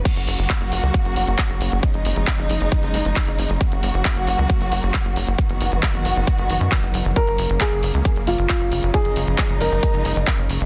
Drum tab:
CC |x---------------|----------------|----------------|----------------|
HH |xxoxxxoxxxoxxxox|xxoxxxoxxxoxxxox|xxoxxxoxxxoxxxox|xxoxxxo-xxoxxxox|
SH |----------------|----------------|----------------|----------------|
CP |----x-------x---|----x-------x---|----x-------x---|----x-------x---|
BD |o---o---o---o---|o---o---o---o---|o---o---o---o---|o---o---o---o---|

CC |----------------|----------------|
HH |xxoxxxoxxxoxxxox|xxoxxxoxxxoxxxox|
SH |x-xxx-xxx-xxx-xx|x-xxx-xxx-xxx-xx|
CP |----x-------x---|----x-------x---|
BD |o---o---o---o---|o---o---o---o---|